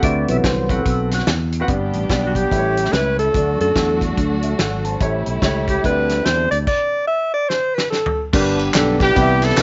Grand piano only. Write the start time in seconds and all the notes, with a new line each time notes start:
0.03 D3 C4 F#4 B4 E5
0.68 C4 F#4 B4 F#5
1.60 C4 F#4 B4 F#5
1.68 G2 B3 D4 G4 D5
2.10 B3 D4 G4 D5
2.51 A2 A3 E4 G4 B4
2.58 C#5
3.34 D3 A3 D4 F#4 D5
3.75 A3 D4 F#4 A4
4.43 E5
4.60 A4 F#5
4.85 C5 A5
5.00 A2 A3 E4 G4 C#5
5.42 A3 E4 G4 C#5
5.84 D3 C4 E4 G4 D5
8.33 G2 D4 G4 A#4
8.39 B4
8.73 D4 G4 A4
8.99 D4 G4 B4
9.15 C3 B3 E4 G4 B4 D5
9.22 E5